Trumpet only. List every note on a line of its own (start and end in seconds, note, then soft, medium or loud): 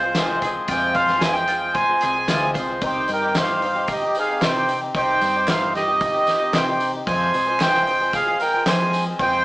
2.85 3.09 C5 medium
3.13 3.36 A#4 medium
3.37 3.86 C5 medium
3.91 4.15 G4 medium
4.18 4.42 G#4 medium
4.44 4.80 C5 medium
4.97 5.46 C5 medium
5.49 5.74 C5 medium
5.76 6.51 G4 medium
6.55 6.92 C5 medium
7.08 7.57 C5 medium
7.61 8.10 C5 medium
8.15 8.39 G#4 medium
8.41 8.65 A#4 medium
8.66 9.04 C5 medium
9.20 9.45 C5 medium